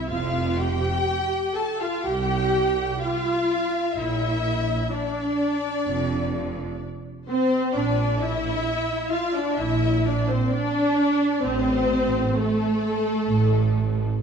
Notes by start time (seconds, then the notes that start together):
0.09 F1 F2 F4 F5
0.57 G4 G5
1.55 A4 A5
1.80 F4 F5
2.04 C2 G4 G5
3.00 F4 F5
3.95 A#1 A#2 E4 E5
4.91 D4 D5
5.85 F1 F2
7.29 C4 C5
7.75 A#1 A#2 D4 D5
8.22 E4 E5
9.11 F4 F5
9.34 D4 D5
9.58 A#1 A#2 E4 E5
10.05 D4 D5
10.29 C4 C5
10.52 D4 D5
11.42 A1 A2 C4 C5
12.36 A3 A4
13.27 A1 A2